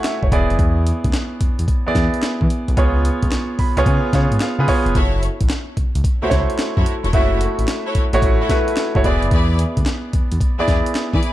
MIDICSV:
0, 0, Header, 1, 5, 480
1, 0, Start_track
1, 0, Key_signature, 3, "minor"
1, 0, Tempo, 545455
1, 518, Time_signature, 4, 2, 24, 8
1, 9970, End_track
2, 0, Start_track
2, 0, Title_t, "String section"
2, 0, Program_c, 0, 48
2, 4354, Note_on_c, 0, 64, 93
2, 4357, Note_on_c, 0, 66, 81
2, 4358, Note_on_c, 0, 69, 80
2, 4360, Note_on_c, 0, 73, 103
2, 4583, Note_off_c, 0, 64, 0
2, 4585, Note_off_c, 0, 66, 0
2, 4586, Note_off_c, 0, 69, 0
2, 4587, Note_off_c, 0, 73, 0
2, 5477, Note_on_c, 0, 64, 72
2, 5479, Note_on_c, 0, 66, 71
2, 5480, Note_on_c, 0, 69, 70
2, 5481, Note_on_c, 0, 73, 80
2, 5599, Note_off_c, 0, 64, 0
2, 5600, Note_off_c, 0, 66, 0
2, 5601, Note_off_c, 0, 69, 0
2, 5601, Note_off_c, 0, 73, 0
2, 5955, Note_on_c, 0, 64, 72
2, 5956, Note_on_c, 0, 66, 72
2, 5958, Note_on_c, 0, 69, 63
2, 5960, Note_on_c, 0, 73, 77
2, 6078, Note_off_c, 0, 64, 0
2, 6079, Note_off_c, 0, 66, 0
2, 6080, Note_off_c, 0, 69, 0
2, 6081, Note_off_c, 0, 73, 0
2, 6195, Note_on_c, 0, 64, 72
2, 6197, Note_on_c, 0, 66, 66
2, 6199, Note_on_c, 0, 69, 68
2, 6201, Note_on_c, 0, 73, 82
2, 6264, Note_off_c, 0, 64, 0
2, 6266, Note_off_c, 0, 66, 0
2, 6268, Note_off_c, 0, 69, 0
2, 6269, Note_off_c, 0, 73, 0
2, 6275, Note_on_c, 0, 64, 92
2, 6277, Note_on_c, 0, 66, 82
2, 6278, Note_on_c, 0, 69, 82
2, 6279, Note_on_c, 0, 73, 95
2, 6504, Note_off_c, 0, 64, 0
2, 6505, Note_off_c, 0, 66, 0
2, 6506, Note_off_c, 0, 69, 0
2, 6506, Note_off_c, 0, 73, 0
2, 6916, Note_on_c, 0, 64, 77
2, 6917, Note_on_c, 0, 66, 72
2, 6918, Note_on_c, 0, 69, 72
2, 6921, Note_on_c, 0, 73, 86
2, 7038, Note_off_c, 0, 64, 0
2, 7039, Note_off_c, 0, 66, 0
2, 7040, Note_off_c, 0, 69, 0
2, 7041, Note_off_c, 0, 73, 0
2, 7396, Note_on_c, 0, 64, 76
2, 7398, Note_on_c, 0, 66, 70
2, 7399, Note_on_c, 0, 69, 69
2, 7401, Note_on_c, 0, 73, 79
2, 7518, Note_off_c, 0, 64, 0
2, 7519, Note_off_c, 0, 66, 0
2, 7520, Note_off_c, 0, 69, 0
2, 7521, Note_off_c, 0, 73, 0
2, 7954, Note_on_c, 0, 64, 81
2, 7957, Note_on_c, 0, 68, 71
2, 7958, Note_on_c, 0, 71, 74
2, 7960, Note_on_c, 0, 74, 82
2, 8137, Note_off_c, 0, 64, 0
2, 8139, Note_off_c, 0, 68, 0
2, 8139, Note_off_c, 0, 71, 0
2, 8140, Note_off_c, 0, 74, 0
2, 8194, Note_on_c, 0, 64, 85
2, 8196, Note_on_c, 0, 68, 81
2, 8198, Note_on_c, 0, 71, 85
2, 8199, Note_on_c, 0, 74, 101
2, 8424, Note_off_c, 0, 64, 0
2, 8425, Note_off_c, 0, 68, 0
2, 8425, Note_off_c, 0, 71, 0
2, 8426, Note_off_c, 0, 74, 0
2, 9317, Note_on_c, 0, 64, 76
2, 9319, Note_on_c, 0, 68, 70
2, 9321, Note_on_c, 0, 71, 75
2, 9322, Note_on_c, 0, 74, 84
2, 9439, Note_off_c, 0, 64, 0
2, 9440, Note_off_c, 0, 68, 0
2, 9441, Note_off_c, 0, 71, 0
2, 9442, Note_off_c, 0, 74, 0
2, 9796, Note_on_c, 0, 64, 72
2, 9797, Note_on_c, 0, 68, 69
2, 9799, Note_on_c, 0, 71, 75
2, 9801, Note_on_c, 0, 74, 84
2, 9919, Note_off_c, 0, 64, 0
2, 9919, Note_off_c, 0, 68, 0
2, 9920, Note_off_c, 0, 71, 0
2, 9921, Note_off_c, 0, 74, 0
2, 9970, End_track
3, 0, Start_track
3, 0, Title_t, "Grand piano"
3, 0, Program_c, 1, 0
3, 0, Control_c, 1, 64, 127
3, 0, Note_on_c, 1, 57, 101
3, 0, Note_on_c, 1, 64, 92
3, 0, Note_on_c, 1, 66, 86
3, 0, Note_on_c, 1, 68, 106
3, 0, Note_on_c, 1, 73, 118
3, 0, Note_on_c, 1, 78, 70
3, 0, Note_on_c, 1, 80, 60
3, 46, Note_on_c, 1, 76, 70
3, 195, Note_off_c, 1, 76, 0
3, 204, Note_off_c, 1, 73, 0
3, 204, Note_on_c, 1, 73, 64
3, 281, Note_on_c, 1, 59, 85
3, 284, Note_off_c, 1, 64, 0
3, 284, Note_on_c, 1, 64, 86
3, 288, Note_off_c, 1, 68, 0
3, 288, Control_c, 1, 64, 0
3, 288, Note_on_c, 1, 68, 88
3, 290, Note_off_c, 1, 66, 0
3, 290, Note_on_c, 1, 74, 94
3, 292, Note_off_c, 1, 78, 0
3, 296, Note_off_c, 1, 57, 0
3, 296, Note_off_c, 1, 80, 0
3, 430, Note_off_c, 1, 73, 0
3, 442, Control_c, 1, 64, 127
3, 1108, Note_off_c, 1, 59, 0
3, 1110, Note_off_c, 1, 64, 0
3, 1112, Note_off_c, 1, 68, 0
3, 1113, Note_off_c, 1, 74, 0
3, 1641, Note_on_c, 1, 59, 86
3, 1644, Note_on_c, 1, 64, 71
3, 1648, Note_on_c, 1, 68, 76
3, 1652, Note_on_c, 1, 74, 92
3, 2334, Note_off_c, 1, 59, 0
3, 2336, Note_off_c, 1, 64, 0
3, 2338, Note_off_c, 1, 68, 0
3, 2340, Note_off_c, 1, 74, 0
3, 2436, Note_on_c, 1, 59, 95
3, 2440, Note_on_c, 1, 65, 84
3, 2444, Note_on_c, 1, 68, 85
3, 2448, Note_on_c, 1, 73, 97
3, 2450, Control_c, 1, 64, 0
3, 2593, Control_c, 1, 64, 127
3, 3145, Note_off_c, 1, 59, 0
3, 3147, Note_off_c, 1, 65, 0
3, 3148, Note_off_c, 1, 68, 0
3, 3150, Note_off_c, 1, 73, 0
3, 3161, Note_on_c, 1, 83, 72
3, 3316, Note_on_c, 1, 59, 99
3, 3321, Note_on_c, 1, 65, 93
3, 3325, Note_on_c, 1, 68, 93
3, 3328, Note_on_c, 1, 73, 107
3, 3383, Note_off_c, 1, 83, 0
3, 3406, Note_on_c, 1, 80, 70
3, 3598, Note_off_c, 1, 59, 0
3, 3600, Note_off_c, 1, 65, 0
3, 3602, Note_off_c, 1, 68, 0
3, 3604, Note_off_c, 1, 73, 0
3, 3626, Note_off_c, 1, 80, 0
3, 3640, Note_on_c, 1, 59, 79
3, 3643, Note_on_c, 1, 65, 67
3, 3645, Note_on_c, 1, 77, 69
3, 3647, Note_on_c, 1, 68, 69
3, 3651, Note_on_c, 1, 73, 86
3, 3865, Note_off_c, 1, 77, 0
3, 3883, Note_on_c, 1, 77, 70
3, 3960, Note_off_c, 1, 59, 0
3, 3961, Note_off_c, 1, 65, 0
3, 3964, Note_off_c, 1, 68, 0
3, 3965, Note_off_c, 1, 73, 0
3, 4038, Note_on_c, 1, 59, 88
3, 4042, Note_on_c, 1, 65, 83
3, 4046, Note_on_c, 1, 68, 89
3, 4049, Note_on_c, 1, 71, 96
3, 4103, Note_off_c, 1, 59, 0
3, 4104, Note_off_c, 1, 77, 0
3, 4107, Note_off_c, 1, 65, 0
3, 4109, Note_off_c, 1, 68, 0
3, 4110, Note_off_c, 1, 71, 0
3, 4117, Note_on_c, 1, 59, 94
3, 4120, Note_on_c, 1, 65, 93
3, 4123, Note_on_c, 1, 73, 107
3, 4125, Note_on_c, 1, 68, 88
3, 4357, Note_off_c, 1, 59, 0
3, 4359, Note_off_c, 1, 65, 0
3, 4362, Note_off_c, 1, 68, 0
3, 4363, Note_off_c, 1, 73, 0
3, 4368, Control_c, 1, 64, 0
3, 4550, Control_c, 1, 64, 127
3, 5475, Note_on_c, 1, 57, 80
3, 5478, Note_on_c, 1, 64, 78
3, 5482, Note_on_c, 1, 66, 73
3, 5485, Note_on_c, 1, 72, 75
3, 5520, Note_off_c, 1, 72, 0
3, 5543, Note_on_c, 1, 73, 92
3, 6172, Note_off_c, 1, 57, 0
3, 6173, Note_off_c, 1, 64, 0
3, 6175, Note_off_c, 1, 66, 0
3, 6205, Note_off_c, 1, 73, 0
3, 6276, Note_on_c, 1, 57, 93
3, 6281, Note_on_c, 1, 64, 83
3, 6285, Note_on_c, 1, 66, 84
3, 6288, Note_on_c, 1, 76, 101
3, 6985, Note_off_c, 1, 57, 0
3, 6987, Note_off_c, 1, 64, 0
3, 6989, Note_off_c, 1, 66, 0
3, 6990, Note_off_c, 1, 76, 0
3, 7157, Note_on_c, 1, 57, 103
3, 7159, Note_on_c, 1, 64, 97
3, 7164, Note_on_c, 1, 66, 96
3, 7166, Note_on_c, 1, 73, 108
3, 7438, Note_off_c, 1, 57, 0
3, 7439, Note_off_c, 1, 64, 0
3, 7442, Note_off_c, 1, 66, 0
3, 7443, Note_off_c, 1, 73, 0
3, 7475, Note_on_c, 1, 57, 84
3, 7479, Note_on_c, 1, 64, 77
3, 7484, Note_on_c, 1, 66, 71
3, 7487, Note_on_c, 1, 71, 87
3, 7798, Note_off_c, 1, 57, 0
3, 7800, Note_off_c, 1, 64, 0
3, 7802, Note_off_c, 1, 66, 0
3, 7803, Note_off_c, 1, 71, 0
3, 7876, Note_on_c, 1, 57, 85
3, 7880, Note_on_c, 1, 64, 81
3, 7883, Note_on_c, 1, 66, 79
3, 7887, Note_on_c, 1, 73, 99
3, 7944, Note_off_c, 1, 57, 0
3, 7946, Note_off_c, 1, 64, 0
3, 7947, Note_off_c, 1, 66, 0
3, 7949, Note_off_c, 1, 73, 0
3, 7956, Note_on_c, 1, 59, 88
3, 7959, Note_on_c, 1, 64, 78
3, 7965, Note_on_c, 1, 68, 81
3, 7968, Note_on_c, 1, 74, 92
3, 7969, Control_c, 1, 64, 0
3, 8147, Control_c, 1, 64, 127
3, 8786, Note_off_c, 1, 59, 0
3, 8787, Note_off_c, 1, 64, 0
3, 8790, Note_off_c, 1, 68, 0
3, 8791, Note_off_c, 1, 74, 0
3, 9318, Note_on_c, 1, 59, 79
3, 9321, Note_on_c, 1, 64, 79
3, 9325, Note_on_c, 1, 68, 71
3, 9329, Note_on_c, 1, 74, 95
3, 9970, Note_off_c, 1, 59, 0
3, 9970, Note_off_c, 1, 64, 0
3, 9970, Note_off_c, 1, 68, 0
3, 9970, Note_off_c, 1, 74, 0
3, 9970, End_track
4, 0, Start_track
4, 0, Title_t, "Analog synth bass"
4, 0, Program_c, 2, 38
4, 199, Note_on_c, 2, 30, 92
4, 257, Note_off_c, 2, 30, 0
4, 280, Note_on_c, 2, 28, 105
4, 397, Note_off_c, 2, 28, 0
4, 440, Note_on_c, 2, 30, 91
4, 498, Note_off_c, 2, 30, 0
4, 518, Note_on_c, 2, 40, 114
4, 812, Note_off_c, 2, 40, 0
4, 919, Note_on_c, 2, 38, 94
4, 977, Note_off_c, 2, 38, 0
4, 1239, Note_on_c, 2, 40, 46
4, 1303, Note_off_c, 2, 40, 0
4, 1398, Note_on_c, 2, 40, 90
4, 1457, Note_off_c, 2, 40, 0
4, 1639, Note_on_c, 2, 40, 46
4, 1671, Note_off_c, 2, 40, 0
4, 1717, Note_on_c, 2, 40, 102
4, 1835, Note_off_c, 2, 40, 0
4, 2120, Note_on_c, 2, 52, 101
4, 2178, Note_off_c, 2, 52, 0
4, 2361, Note_on_c, 2, 35, 91
4, 2418, Note_off_c, 2, 35, 0
4, 2438, Note_on_c, 2, 37, 102
4, 2731, Note_off_c, 2, 37, 0
4, 2839, Note_on_c, 2, 37, 95
4, 2897, Note_off_c, 2, 37, 0
4, 3158, Note_on_c, 2, 37, 47
4, 3223, Note_off_c, 2, 37, 0
4, 3316, Note_on_c, 2, 37, 91
4, 3375, Note_off_c, 2, 37, 0
4, 3397, Note_on_c, 2, 49, 110
4, 3515, Note_off_c, 2, 49, 0
4, 3635, Note_on_c, 2, 49, 108
4, 3754, Note_off_c, 2, 49, 0
4, 3795, Note_on_c, 2, 44, 96
4, 3855, Note_off_c, 2, 44, 0
4, 4036, Note_on_c, 2, 49, 102
4, 4095, Note_off_c, 2, 49, 0
4, 4273, Note_on_c, 2, 29, 89
4, 4333, Note_off_c, 2, 29, 0
4, 4357, Note_on_c, 2, 30, 107
4, 4651, Note_off_c, 2, 30, 0
4, 4758, Note_on_c, 2, 33, 89
4, 4816, Note_off_c, 2, 33, 0
4, 5077, Note_on_c, 2, 37, 47
4, 5142, Note_off_c, 2, 37, 0
4, 5237, Note_on_c, 2, 37, 90
4, 5296, Note_off_c, 2, 37, 0
4, 5478, Note_on_c, 2, 37, 50
4, 5510, Note_off_c, 2, 37, 0
4, 5554, Note_on_c, 2, 37, 98
4, 5673, Note_off_c, 2, 37, 0
4, 5959, Note_on_c, 2, 42, 96
4, 6017, Note_off_c, 2, 42, 0
4, 6196, Note_on_c, 2, 28, 87
4, 6255, Note_off_c, 2, 28, 0
4, 6276, Note_on_c, 2, 30, 107
4, 6570, Note_off_c, 2, 30, 0
4, 6676, Note_on_c, 2, 33, 91
4, 6735, Note_off_c, 2, 33, 0
4, 6997, Note_on_c, 2, 33, 49
4, 7062, Note_off_c, 2, 33, 0
4, 7156, Note_on_c, 2, 33, 92
4, 7215, Note_off_c, 2, 33, 0
4, 7236, Note_on_c, 2, 33, 100
4, 7413, Note_off_c, 2, 33, 0
4, 7878, Note_on_c, 2, 30, 100
4, 7936, Note_off_c, 2, 30, 0
4, 7958, Note_on_c, 2, 28, 104
4, 8076, Note_off_c, 2, 28, 0
4, 8116, Note_on_c, 2, 30, 91
4, 8175, Note_off_c, 2, 30, 0
4, 8196, Note_on_c, 2, 40, 109
4, 8490, Note_off_c, 2, 40, 0
4, 8598, Note_on_c, 2, 38, 84
4, 8657, Note_off_c, 2, 38, 0
4, 8918, Note_on_c, 2, 40, 48
4, 8982, Note_off_c, 2, 40, 0
4, 9079, Note_on_c, 2, 40, 95
4, 9137, Note_off_c, 2, 40, 0
4, 9319, Note_on_c, 2, 40, 50
4, 9351, Note_off_c, 2, 40, 0
4, 9396, Note_on_c, 2, 40, 96
4, 9514, Note_off_c, 2, 40, 0
4, 9799, Note_on_c, 2, 52, 99
4, 9857, Note_off_c, 2, 52, 0
4, 9970, End_track
5, 0, Start_track
5, 0, Title_t, "Drums"
5, 36, Note_on_c, 9, 39, 86
5, 38, Note_on_c, 9, 38, 106
5, 40, Note_on_c, 9, 42, 75
5, 124, Note_off_c, 9, 39, 0
5, 126, Note_off_c, 9, 38, 0
5, 128, Note_off_c, 9, 42, 0
5, 199, Note_on_c, 9, 36, 80
5, 280, Note_off_c, 9, 36, 0
5, 280, Note_on_c, 9, 36, 91
5, 281, Note_on_c, 9, 42, 73
5, 368, Note_off_c, 9, 36, 0
5, 369, Note_off_c, 9, 42, 0
5, 443, Note_on_c, 9, 42, 38
5, 519, Note_on_c, 9, 36, 117
5, 521, Note_off_c, 9, 42, 0
5, 521, Note_on_c, 9, 42, 72
5, 607, Note_off_c, 9, 36, 0
5, 609, Note_off_c, 9, 42, 0
5, 762, Note_on_c, 9, 42, 77
5, 850, Note_off_c, 9, 42, 0
5, 919, Note_on_c, 9, 42, 60
5, 920, Note_on_c, 9, 36, 92
5, 997, Note_on_c, 9, 39, 93
5, 999, Note_off_c, 9, 42, 0
5, 999, Note_on_c, 9, 38, 114
5, 999, Note_on_c, 9, 42, 76
5, 1008, Note_off_c, 9, 36, 0
5, 1085, Note_off_c, 9, 39, 0
5, 1087, Note_off_c, 9, 38, 0
5, 1087, Note_off_c, 9, 42, 0
5, 1237, Note_on_c, 9, 42, 74
5, 1238, Note_on_c, 9, 36, 85
5, 1325, Note_off_c, 9, 42, 0
5, 1326, Note_off_c, 9, 36, 0
5, 1400, Note_on_c, 9, 42, 61
5, 1477, Note_on_c, 9, 36, 104
5, 1480, Note_off_c, 9, 42, 0
5, 1480, Note_on_c, 9, 42, 80
5, 1565, Note_off_c, 9, 36, 0
5, 1568, Note_off_c, 9, 42, 0
5, 1717, Note_on_c, 9, 36, 94
5, 1720, Note_on_c, 9, 38, 79
5, 1722, Note_on_c, 9, 42, 82
5, 1805, Note_off_c, 9, 36, 0
5, 1808, Note_off_c, 9, 38, 0
5, 1810, Note_off_c, 9, 42, 0
5, 1881, Note_on_c, 9, 42, 52
5, 1958, Note_on_c, 9, 39, 92
5, 1960, Note_on_c, 9, 38, 110
5, 1962, Note_off_c, 9, 42, 0
5, 1962, Note_on_c, 9, 42, 77
5, 2046, Note_off_c, 9, 39, 0
5, 2048, Note_off_c, 9, 38, 0
5, 2050, Note_off_c, 9, 42, 0
5, 2120, Note_on_c, 9, 36, 84
5, 2202, Note_on_c, 9, 42, 70
5, 2208, Note_off_c, 9, 36, 0
5, 2290, Note_off_c, 9, 42, 0
5, 2361, Note_on_c, 9, 42, 40
5, 2438, Note_on_c, 9, 36, 107
5, 2439, Note_off_c, 9, 42, 0
5, 2439, Note_on_c, 9, 42, 67
5, 2526, Note_off_c, 9, 36, 0
5, 2527, Note_off_c, 9, 42, 0
5, 2683, Note_on_c, 9, 42, 74
5, 2771, Note_off_c, 9, 42, 0
5, 2838, Note_on_c, 9, 42, 58
5, 2840, Note_on_c, 9, 36, 96
5, 2917, Note_on_c, 9, 39, 96
5, 2919, Note_off_c, 9, 42, 0
5, 2919, Note_on_c, 9, 38, 112
5, 2919, Note_on_c, 9, 42, 68
5, 2928, Note_off_c, 9, 36, 0
5, 3005, Note_off_c, 9, 39, 0
5, 3007, Note_off_c, 9, 38, 0
5, 3007, Note_off_c, 9, 42, 0
5, 3157, Note_on_c, 9, 46, 69
5, 3158, Note_on_c, 9, 36, 88
5, 3245, Note_off_c, 9, 46, 0
5, 3246, Note_off_c, 9, 36, 0
5, 3318, Note_on_c, 9, 42, 59
5, 3396, Note_on_c, 9, 36, 105
5, 3399, Note_off_c, 9, 42, 0
5, 3399, Note_on_c, 9, 42, 77
5, 3484, Note_off_c, 9, 36, 0
5, 3487, Note_off_c, 9, 42, 0
5, 3635, Note_on_c, 9, 36, 93
5, 3636, Note_on_c, 9, 38, 75
5, 3637, Note_on_c, 9, 42, 83
5, 3723, Note_off_c, 9, 36, 0
5, 3724, Note_off_c, 9, 38, 0
5, 3725, Note_off_c, 9, 42, 0
5, 3799, Note_on_c, 9, 42, 53
5, 3875, Note_on_c, 9, 39, 88
5, 3876, Note_on_c, 9, 38, 109
5, 3879, Note_off_c, 9, 42, 0
5, 3879, Note_on_c, 9, 42, 75
5, 3963, Note_off_c, 9, 39, 0
5, 3964, Note_off_c, 9, 38, 0
5, 3967, Note_off_c, 9, 42, 0
5, 4118, Note_on_c, 9, 46, 78
5, 4119, Note_on_c, 9, 36, 92
5, 4206, Note_off_c, 9, 46, 0
5, 4207, Note_off_c, 9, 36, 0
5, 4279, Note_on_c, 9, 42, 41
5, 4357, Note_on_c, 9, 36, 105
5, 4358, Note_off_c, 9, 42, 0
5, 4358, Note_on_c, 9, 42, 65
5, 4445, Note_off_c, 9, 36, 0
5, 4446, Note_off_c, 9, 42, 0
5, 4601, Note_on_c, 9, 42, 75
5, 4689, Note_off_c, 9, 42, 0
5, 4757, Note_on_c, 9, 42, 59
5, 4759, Note_on_c, 9, 36, 88
5, 4836, Note_on_c, 9, 39, 98
5, 4837, Note_on_c, 9, 38, 109
5, 4838, Note_off_c, 9, 42, 0
5, 4838, Note_on_c, 9, 42, 68
5, 4847, Note_off_c, 9, 36, 0
5, 4924, Note_off_c, 9, 39, 0
5, 4925, Note_off_c, 9, 38, 0
5, 4926, Note_off_c, 9, 42, 0
5, 5078, Note_on_c, 9, 36, 86
5, 5078, Note_on_c, 9, 42, 65
5, 5166, Note_off_c, 9, 36, 0
5, 5166, Note_off_c, 9, 42, 0
5, 5239, Note_on_c, 9, 42, 62
5, 5316, Note_on_c, 9, 36, 95
5, 5320, Note_off_c, 9, 42, 0
5, 5320, Note_on_c, 9, 42, 80
5, 5404, Note_off_c, 9, 36, 0
5, 5408, Note_off_c, 9, 42, 0
5, 5555, Note_on_c, 9, 36, 86
5, 5556, Note_on_c, 9, 38, 74
5, 5558, Note_on_c, 9, 42, 82
5, 5643, Note_off_c, 9, 36, 0
5, 5644, Note_off_c, 9, 38, 0
5, 5646, Note_off_c, 9, 42, 0
5, 5718, Note_on_c, 9, 42, 52
5, 5795, Note_on_c, 9, 39, 86
5, 5797, Note_on_c, 9, 38, 113
5, 5799, Note_off_c, 9, 42, 0
5, 5799, Note_on_c, 9, 42, 77
5, 5883, Note_off_c, 9, 39, 0
5, 5885, Note_off_c, 9, 38, 0
5, 5887, Note_off_c, 9, 42, 0
5, 5958, Note_on_c, 9, 36, 83
5, 6038, Note_on_c, 9, 42, 74
5, 6046, Note_off_c, 9, 36, 0
5, 6126, Note_off_c, 9, 42, 0
5, 6199, Note_on_c, 9, 42, 39
5, 6276, Note_off_c, 9, 42, 0
5, 6276, Note_on_c, 9, 36, 115
5, 6276, Note_on_c, 9, 42, 68
5, 6364, Note_off_c, 9, 36, 0
5, 6364, Note_off_c, 9, 42, 0
5, 6519, Note_on_c, 9, 42, 79
5, 6607, Note_off_c, 9, 42, 0
5, 6677, Note_on_c, 9, 42, 59
5, 6756, Note_on_c, 9, 39, 92
5, 6757, Note_on_c, 9, 38, 114
5, 6758, Note_off_c, 9, 42, 0
5, 6758, Note_on_c, 9, 42, 68
5, 6844, Note_off_c, 9, 39, 0
5, 6845, Note_off_c, 9, 38, 0
5, 6846, Note_off_c, 9, 42, 0
5, 6995, Note_on_c, 9, 42, 70
5, 6997, Note_on_c, 9, 36, 83
5, 7083, Note_off_c, 9, 42, 0
5, 7085, Note_off_c, 9, 36, 0
5, 7156, Note_on_c, 9, 42, 56
5, 7235, Note_on_c, 9, 36, 100
5, 7239, Note_off_c, 9, 42, 0
5, 7239, Note_on_c, 9, 42, 77
5, 7323, Note_off_c, 9, 36, 0
5, 7327, Note_off_c, 9, 42, 0
5, 7474, Note_on_c, 9, 36, 95
5, 7475, Note_on_c, 9, 38, 76
5, 7476, Note_on_c, 9, 42, 76
5, 7562, Note_off_c, 9, 36, 0
5, 7563, Note_off_c, 9, 38, 0
5, 7564, Note_off_c, 9, 42, 0
5, 7637, Note_on_c, 9, 42, 57
5, 7714, Note_on_c, 9, 39, 85
5, 7716, Note_on_c, 9, 38, 109
5, 7718, Note_off_c, 9, 42, 0
5, 7718, Note_on_c, 9, 42, 73
5, 7802, Note_off_c, 9, 39, 0
5, 7804, Note_off_c, 9, 38, 0
5, 7806, Note_off_c, 9, 42, 0
5, 7878, Note_on_c, 9, 36, 86
5, 7958, Note_off_c, 9, 36, 0
5, 7958, Note_on_c, 9, 36, 89
5, 7958, Note_on_c, 9, 42, 79
5, 8046, Note_off_c, 9, 36, 0
5, 8046, Note_off_c, 9, 42, 0
5, 8118, Note_on_c, 9, 42, 39
5, 8196, Note_off_c, 9, 42, 0
5, 8196, Note_on_c, 9, 36, 107
5, 8196, Note_on_c, 9, 42, 70
5, 8284, Note_off_c, 9, 36, 0
5, 8284, Note_off_c, 9, 42, 0
5, 8439, Note_on_c, 9, 42, 77
5, 8527, Note_off_c, 9, 42, 0
5, 8598, Note_on_c, 9, 42, 61
5, 8599, Note_on_c, 9, 36, 93
5, 8675, Note_on_c, 9, 39, 92
5, 8677, Note_off_c, 9, 42, 0
5, 8677, Note_on_c, 9, 38, 116
5, 8677, Note_on_c, 9, 42, 72
5, 8687, Note_off_c, 9, 36, 0
5, 8763, Note_off_c, 9, 39, 0
5, 8765, Note_off_c, 9, 38, 0
5, 8765, Note_off_c, 9, 42, 0
5, 8917, Note_on_c, 9, 42, 69
5, 8918, Note_on_c, 9, 36, 87
5, 9005, Note_off_c, 9, 42, 0
5, 9006, Note_off_c, 9, 36, 0
5, 9077, Note_on_c, 9, 42, 61
5, 9157, Note_on_c, 9, 36, 105
5, 9161, Note_off_c, 9, 42, 0
5, 9161, Note_on_c, 9, 42, 76
5, 9245, Note_off_c, 9, 36, 0
5, 9249, Note_off_c, 9, 42, 0
5, 9396, Note_on_c, 9, 36, 94
5, 9399, Note_on_c, 9, 38, 72
5, 9401, Note_on_c, 9, 42, 75
5, 9484, Note_off_c, 9, 36, 0
5, 9487, Note_off_c, 9, 38, 0
5, 9489, Note_off_c, 9, 42, 0
5, 9560, Note_on_c, 9, 42, 60
5, 9637, Note_on_c, 9, 39, 86
5, 9638, Note_on_c, 9, 38, 106
5, 9641, Note_off_c, 9, 42, 0
5, 9641, Note_on_c, 9, 42, 75
5, 9725, Note_off_c, 9, 39, 0
5, 9726, Note_off_c, 9, 38, 0
5, 9729, Note_off_c, 9, 42, 0
5, 9799, Note_on_c, 9, 36, 80
5, 9879, Note_on_c, 9, 42, 71
5, 9887, Note_off_c, 9, 36, 0
5, 9967, Note_off_c, 9, 42, 0
5, 9970, End_track
0, 0, End_of_file